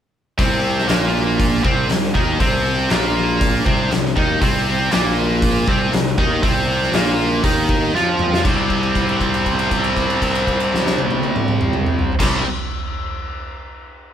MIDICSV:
0, 0, Header, 1, 4, 480
1, 0, Start_track
1, 0, Key_signature, -3, "minor"
1, 0, Tempo, 503356
1, 370, Time_signature, 4, 2, 24, 8
1, 8049, Tempo, 507614
1, 13434, End_track
2, 0, Start_track
2, 0, Title_t, "Distorted electric guitar"
2, 0, Program_c, 0, 30
2, 363, Note_on_c, 0, 48, 81
2, 371, Note_on_c, 0, 60, 84
2, 838, Note_off_c, 0, 48, 0
2, 840, Note_off_c, 0, 60, 0
2, 842, Note_on_c, 0, 46, 98
2, 844, Note_on_c, 0, 58, 112
2, 1553, Note_off_c, 0, 46, 0
2, 1557, Note_on_c, 0, 48, 77
2, 1561, Note_off_c, 0, 58, 0
2, 1565, Note_on_c, 0, 60, 99
2, 1791, Note_off_c, 0, 48, 0
2, 1802, Note_off_c, 0, 60, 0
2, 1802, Note_on_c, 0, 48, 71
2, 2000, Note_off_c, 0, 48, 0
2, 2040, Note_on_c, 0, 51, 86
2, 2047, Note_on_c, 0, 63, 78
2, 2279, Note_off_c, 0, 51, 0
2, 2283, Note_off_c, 0, 63, 0
2, 2284, Note_on_c, 0, 48, 77
2, 2292, Note_on_c, 0, 60, 93
2, 2761, Note_off_c, 0, 48, 0
2, 2765, Note_off_c, 0, 60, 0
2, 2769, Note_on_c, 0, 46, 98
2, 2775, Note_on_c, 0, 58, 116
2, 3480, Note_off_c, 0, 46, 0
2, 3484, Note_on_c, 0, 48, 92
2, 3486, Note_off_c, 0, 58, 0
2, 3490, Note_on_c, 0, 60, 99
2, 3715, Note_off_c, 0, 48, 0
2, 3723, Note_off_c, 0, 60, 0
2, 3726, Note_on_c, 0, 48, 75
2, 3921, Note_off_c, 0, 48, 0
2, 3963, Note_on_c, 0, 51, 75
2, 3972, Note_on_c, 0, 63, 95
2, 4198, Note_off_c, 0, 51, 0
2, 4202, Note_on_c, 0, 48, 80
2, 4204, Note_off_c, 0, 63, 0
2, 4213, Note_on_c, 0, 60, 98
2, 4678, Note_off_c, 0, 48, 0
2, 4684, Note_off_c, 0, 60, 0
2, 4685, Note_on_c, 0, 46, 99
2, 4694, Note_on_c, 0, 58, 104
2, 5399, Note_off_c, 0, 46, 0
2, 5404, Note_off_c, 0, 58, 0
2, 5419, Note_on_c, 0, 48, 80
2, 5424, Note_on_c, 0, 60, 81
2, 5643, Note_off_c, 0, 48, 0
2, 5649, Note_off_c, 0, 60, 0
2, 5654, Note_on_c, 0, 48, 76
2, 5843, Note_off_c, 0, 48, 0
2, 5901, Note_on_c, 0, 51, 83
2, 5905, Note_on_c, 0, 63, 90
2, 6127, Note_off_c, 0, 51, 0
2, 6130, Note_off_c, 0, 63, 0
2, 6132, Note_on_c, 0, 48, 75
2, 6134, Note_on_c, 0, 60, 92
2, 6603, Note_off_c, 0, 48, 0
2, 6604, Note_off_c, 0, 60, 0
2, 6618, Note_on_c, 0, 46, 98
2, 6622, Note_on_c, 0, 58, 111
2, 7087, Note_off_c, 0, 46, 0
2, 7088, Note_off_c, 0, 58, 0
2, 7096, Note_on_c, 0, 51, 90
2, 7100, Note_on_c, 0, 63, 89
2, 7566, Note_off_c, 0, 51, 0
2, 7568, Note_off_c, 0, 63, 0
2, 7580, Note_on_c, 0, 53, 93
2, 7584, Note_on_c, 0, 65, 101
2, 8048, Note_off_c, 0, 53, 0
2, 8051, Note_off_c, 0, 65, 0
2, 8052, Note_on_c, 0, 48, 82
2, 8073, Note_on_c, 0, 55, 82
2, 8091, Note_on_c, 0, 60, 83
2, 11541, Note_off_c, 0, 48, 0
2, 11552, Note_off_c, 0, 55, 0
2, 11561, Note_off_c, 0, 60, 0
2, 11594, Note_on_c, 0, 48, 85
2, 11616, Note_on_c, 0, 55, 95
2, 11634, Note_on_c, 0, 60, 85
2, 11813, Note_off_c, 0, 48, 0
2, 11824, Note_off_c, 0, 55, 0
2, 11833, Note_off_c, 0, 60, 0
2, 13434, End_track
3, 0, Start_track
3, 0, Title_t, "Picked electric bass"
3, 0, Program_c, 1, 34
3, 369, Note_on_c, 1, 36, 88
3, 817, Note_off_c, 1, 36, 0
3, 839, Note_on_c, 1, 34, 88
3, 1529, Note_off_c, 1, 34, 0
3, 1565, Note_on_c, 1, 36, 84
3, 1792, Note_off_c, 1, 36, 0
3, 1802, Note_on_c, 1, 36, 77
3, 2030, Note_off_c, 1, 36, 0
3, 2046, Note_on_c, 1, 39, 95
3, 2273, Note_off_c, 1, 39, 0
3, 2286, Note_on_c, 1, 36, 99
3, 2735, Note_off_c, 1, 36, 0
3, 2767, Note_on_c, 1, 34, 99
3, 3451, Note_off_c, 1, 34, 0
3, 3489, Note_on_c, 1, 36, 96
3, 3713, Note_off_c, 1, 36, 0
3, 3722, Note_on_c, 1, 36, 82
3, 3949, Note_off_c, 1, 36, 0
3, 3967, Note_on_c, 1, 39, 90
3, 4192, Note_off_c, 1, 39, 0
3, 4210, Note_on_c, 1, 36, 109
3, 4656, Note_off_c, 1, 36, 0
3, 4691, Note_on_c, 1, 34, 78
3, 5371, Note_off_c, 1, 34, 0
3, 5407, Note_on_c, 1, 36, 90
3, 5631, Note_off_c, 1, 36, 0
3, 5637, Note_on_c, 1, 36, 77
3, 5865, Note_off_c, 1, 36, 0
3, 5889, Note_on_c, 1, 39, 89
3, 6112, Note_off_c, 1, 39, 0
3, 6127, Note_on_c, 1, 36, 88
3, 6574, Note_off_c, 1, 36, 0
3, 6600, Note_on_c, 1, 34, 88
3, 7051, Note_off_c, 1, 34, 0
3, 7087, Note_on_c, 1, 39, 89
3, 7535, Note_off_c, 1, 39, 0
3, 7575, Note_on_c, 1, 41, 99
3, 8021, Note_off_c, 1, 41, 0
3, 8058, Note_on_c, 1, 36, 106
3, 11507, Note_off_c, 1, 36, 0
3, 11603, Note_on_c, 1, 36, 88
3, 11802, Note_off_c, 1, 36, 0
3, 13434, End_track
4, 0, Start_track
4, 0, Title_t, "Drums"
4, 369, Note_on_c, 9, 46, 54
4, 370, Note_on_c, 9, 36, 97
4, 464, Note_off_c, 9, 46, 0
4, 465, Note_off_c, 9, 36, 0
4, 747, Note_on_c, 9, 38, 33
4, 842, Note_off_c, 9, 38, 0
4, 846, Note_on_c, 9, 46, 67
4, 859, Note_on_c, 9, 38, 119
4, 942, Note_off_c, 9, 46, 0
4, 954, Note_off_c, 9, 38, 0
4, 1331, Note_on_c, 9, 36, 105
4, 1332, Note_on_c, 9, 46, 55
4, 1426, Note_off_c, 9, 36, 0
4, 1428, Note_off_c, 9, 46, 0
4, 1570, Note_on_c, 9, 36, 96
4, 1665, Note_off_c, 9, 36, 0
4, 1807, Note_on_c, 9, 46, 55
4, 1820, Note_on_c, 9, 38, 91
4, 1903, Note_off_c, 9, 46, 0
4, 1915, Note_off_c, 9, 38, 0
4, 1945, Note_on_c, 9, 38, 28
4, 2041, Note_off_c, 9, 38, 0
4, 2051, Note_on_c, 9, 36, 90
4, 2147, Note_off_c, 9, 36, 0
4, 2290, Note_on_c, 9, 46, 54
4, 2291, Note_on_c, 9, 36, 102
4, 2385, Note_off_c, 9, 46, 0
4, 2386, Note_off_c, 9, 36, 0
4, 2767, Note_on_c, 9, 46, 60
4, 2779, Note_on_c, 9, 38, 105
4, 2862, Note_off_c, 9, 46, 0
4, 2875, Note_off_c, 9, 38, 0
4, 3253, Note_on_c, 9, 36, 112
4, 3253, Note_on_c, 9, 46, 50
4, 3348, Note_off_c, 9, 36, 0
4, 3348, Note_off_c, 9, 46, 0
4, 3492, Note_on_c, 9, 36, 91
4, 3587, Note_off_c, 9, 36, 0
4, 3732, Note_on_c, 9, 46, 49
4, 3744, Note_on_c, 9, 38, 97
4, 3827, Note_off_c, 9, 46, 0
4, 3839, Note_off_c, 9, 38, 0
4, 3872, Note_on_c, 9, 38, 33
4, 3967, Note_off_c, 9, 38, 0
4, 3974, Note_on_c, 9, 36, 86
4, 4069, Note_off_c, 9, 36, 0
4, 4210, Note_on_c, 9, 46, 51
4, 4212, Note_on_c, 9, 36, 98
4, 4306, Note_off_c, 9, 46, 0
4, 4307, Note_off_c, 9, 36, 0
4, 4687, Note_on_c, 9, 46, 59
4, 4699, Note_on_c, 9, 38, 118
4, 4782, Note_off_c, 9, 46, 0
4, 4795, Note_off_c, 9, 38, 0
4, 5171, Note_on_c, 9, 46, 56
4, 5172, Note_on_c, 9, 36, 94
4, 5266, Note_off_c, 9, 46, 0
4, 5267, Note_off_c, 9, 36, 0
4, 5413, Note_on_c, 9, 36, 85
4, 5508, Note_off_c, 9, 36, 0
4, 5657, Note_on_c, 9, 46, 51
4, 5669, Note_on_c, 9, 38, 103
4, 5752, Note_off_c, 9, 46, 0
4, 5765, Note_off_c, 9, 38, 0
4, 5790, Note_on_c, 9, 38, 29
4, 5885, Note_off_c, 9, 38, 0
4, 5894, Note_on_c, 9, 36, 90
4, 5990, Note_off_c, 9, 36, 0
4, 6133, Note_on_c, 9, 36, 108
4, 6135, Note_on_c, 9, 46, 55
4, 6229, Note_off_c, 9, 36, 0
4, 6231, Note_off_c, 9, 46, 0
4, 6509, Note_on_c, 9, 38, 32
4, 6605, Note_off_c, 9, 38, 0
4, 6612, Note_on_c, 9, 46, 56
4, 6625, Note_on_c, 9, 38, 116
4, 6708, Note_off_c, 9, 46, 0
4, 6720, Note_off_c, 9, 38, 0
4, 7092, Note_on_c, 9, 46, 53
4, 7093, Note_on_c, 9, 36, 102
4, 7187, Note_off_c, 9, 46, 0
4, 7189, Note_off_c, 9, 36, 0
4, 7334, Note_on_c, 9, 36, 90
4, 7429, Note_off_c, 9, 36, 0
4, 7585, Note_on_c, 9, 38, 50
4, 7680, Note_off_c, 9, 38, 0
4, 7812, Note_on_c, 9, 45, 100
4, 7907, Note_off_c, 9, 45, 0
4, 7951, Note_on_c, 9, 38, 92
4, 8046, Note_off_c, 9, 38, 0
4, 8058, Note_on_c, 9, 36, 94
4, 8060, Note_on_c, 9, 49, 75
4, 8152, Note_off_c, 9, 36, 0
4, 8155, Note_off_c, 9, 49, 0
4, 8295, Note_on_c, 9, 36, 58
4, 8296, Note_on_c, 9, 49, 38
4, 8389, Note_off_c, 9, 36, 0
4, 8391, Note_off_c, 9, 49, 0
4, 8417, Note_on_c, 9, 57, 39
4, 8512, Note_off_c, 9, 57, 0
4, 8535, Note_on_c, 9, 36, 72
4, 8538, Note_on_c, 9, 49, 51
4, 8630, Note_off_c, 9, 36, 0
4, 8633, Note_off_c, 9, 49, 0
4, 8661, Note_on_c, 9, 57, 42
4, 8756, Note_off_c, 9, 57, 0
4, 8774, Note_on_c, 9, 36, 65
4, 8777, Note_on_c, 9, 49, 50
4, 8869, Note_off_c, 9, 36, 0
4, 8872, Note_off_c, 9, 49, 0
4, 8898, Note_on_c, 9, 57, 47
4, 8992, Note_off_c, 9, 57, 0
4, 9012, Note_on_c, 9, 36, 53
4, 9013, Note_on_c, 9, 49, 44
4, 9107, Note_off_c, 9, 36, 0
4, 9108, Note_off_c, 9, 49, 0
4, 9134, Note_on_c, 9, 57, 50
4, 9228, Note_off_c, 9, 57, 0
4, 9251, Note_on_c, 9, 36, 66
4, 9252, Note_on_c, 9, 49, 52
4, 9346, Note_off_c, 9, 36, 0
4, 9346, Note_off_c, 9, 49, 0
4, 9371, Note_on_c, 9, 57, 49
4, 9465, Note_off_c, 9, 57, 0
4, 9490, Note_on_c, 9, 36, 55
4, 9493, Note_on_c, 9, 49, 44
4, 9585, Note_off_c, 9, 36, 0
4, 9588, Note_off_c, 9, 49, 0
4, 9617, Note_on_c, 9, 57, 48
4, 9712, Note_off_c, 9, 57, 0
4, 9730, Note_on_c, 9, 36, 64
4, 9735, Note_on_c, 9, 49, 58
4, 9825, Note_off_c, 9, 36, 0
4, 9829, Note_off_c, 9, 49, 0
4, 9856, Note_on_c, 9, 57, 56
4, 9951, Note_off_c, 9, 57, 0
4, 9971, Note_on_c, 9, 36, 57
4, 9976, Note_on_c, 9, 49, 44
4, 10065, Note_off_c, 9, 36, 0
4, 10070, Note_off_c, 9, 49, 0
4, 10092, Note_on_c, 9, 57, 52
4, 10187, Note_off_c, 9, 57, 0
4, 10227, Note_on_c, 9, 38, 84
4, 10322, Note_off_c, 9, 38, 0
4, 10339, Note_on_c, 9, 38, 90
4, 10434, Note_off_c, 9, 38, 0
4, 10453, Note_on_c, 9, 48, 98
4, 10547, Note_off_c, 9, 48, 0
4, 10569, Note_on_c, 9, 48, 90
4, 10663, Note_off_c, 9, 48, 0
4, 10688, Note_on_c, 9, 48, 91
4, 10783, Note_off_c, 9, 48, 0
4, 10808, Note_on_c, 9, 47, 92
4, 10903, Note_off_c, 9, 47, 0
4, 10925, Note_on_c, 9, 47, 91
4, 11019, Note_off_c, 9, 47, 0
4, 11043, Note_on_c, 9, 45, 105
4, 11138, Note_off_c, 9, 45, 0
4, 11161, Note_on_c, 9, 45, 98
4, 11256, Note_off_c, 9, 45, 0
4, 11287, Note_on_c, 9, 45, 95
4, 11381, Note_off_c, 9, 45, 0
4, 11404, Note_on_c, 9, 43, 94
4, 11499, Note_off_c, 9, 43, 0
4, 11531, Note_on_c, 9, 43, 85
4, 11602, Note_on_c, 9, 36, 91
4, 11603, Note_on_c, 9, 49, 102
4, 11615, Note_on_c, 9, 38, 91
4, 11626, Note_off_c, 9, 43, 0
4, 11697, Note_off_c, 9, 36, 0
4, 11697, Note_off_c, 9, 49, 0
4, 11709, Note_off_c, 9, 38, 0
4, 13434, End_track
0, 0, End_of_file